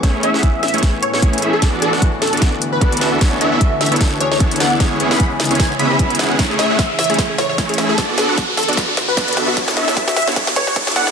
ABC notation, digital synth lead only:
X:1
M:4/4
L:1/16
Q:"Swing 16ths" 1/4=151
K:A
V:1 name="Digital synth lead"
z2 e4 e z3 c c z3 A | z2 A z3 A z4 B4 z | z2 e4 e z3 c c z2 f z | z3 b b z3 g z b3 z3 |
z2 e4 e z3 c c z3 A | z2 A z3 A z4 B4 z | z2 e4 e z3 c c z2 f z |]